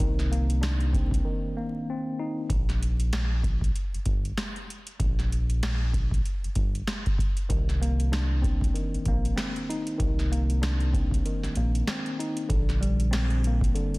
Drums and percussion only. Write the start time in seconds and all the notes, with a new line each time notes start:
0.00 kick, closed hi-hat
0.19 snare, closed hi-hat
0.33 closed hi-hat
0.50 closed hi-hat
0.63 snare, closed hi-hat
0.80 closed hi-hat
0.93 kick, closed hi-hat
1.11 kick, closed hi-hat
2.50 kick, closed hi-hat
2.69 snare, closed hi-hat
2.83 closed hi-hat
3.00 closed hi-hat
3.13 snare, closed hi-hat
3.43 kick, closed hi-hat
3.61 kick, closed hi-hat
3.76 closed hi-hat
3.94 closed hi-hat
4.05 kick, closed hi-hat
4.25 closed hi-hat
4.37 snare, closed hi-hat
4.56 closed hi-hat
4.70 closed hi-hat
4.87 closed hi-hat
5.00 kick, closed hi-hat
5.19 snare, closed hi-hat
5.32 closed hi-hat
5.50 closed hi-hat
5.63 snare, closed hi-hat
5.93 kick, closed hi-hat
6.11 kick, closed hi-hat
6.25 closed hi-hat
6.44 closed hi-hat
6.55 kick, closed hi-hat
6.75 closed hi-hat
6.87 snare, closed hi-hat
7.06 kick, closed hi-hat
7.18 kick, closed hi-hat
7.37 closed hi-hat
7.50 kick, closed hi-hat
7.69 snare, closed hi-hat
7.83 closed hi-hat
8.00 closed hi-hat
8.13 snare, closed hi-hat
8.43 kick, closed hi-hat
8.61 kick, closed hi-hat
8.76 closed hi-hat
8.94 closed hi-hat
9.05 kick, closed hi-hat
9.25 closed hi-hat
9.38 snare, closed hi-hat
9.56 closed hi-hat
9.70 closed hi-hat
9.87 closed hi-hat
10.00 kick, closed hi-hat
10.19 snare, closed hi-hat
10.33 closed hi-hat
10.50 closed hi-hat
10.63 snare, closed hi-hat
10.80 closed hi-hat
10.93 kick, closed hi-hat
11.11 kick, closed hi-hat
11.26 closed hi-hat
11.43 snare, closed hi-hat
11.55 closed hi-hat
11.75 closed hi-hat
11.87 snare, closed hi-hat
12.06 closed hi-hat
12.20 closed hi-hat
12.37 closed hi-hat
12.50 kick, closed hi-hat
12.69 snare, closed hi-hat
12.83 closed hi-hat
13.00 closed hi-hat
13.13 snare, closed hi-hat
13.30 closed hi-hat
13.44 closed hi-hat
13.61 kick, closed hi-hat
13.76 closed hi-hat
13.94 closed hi-hat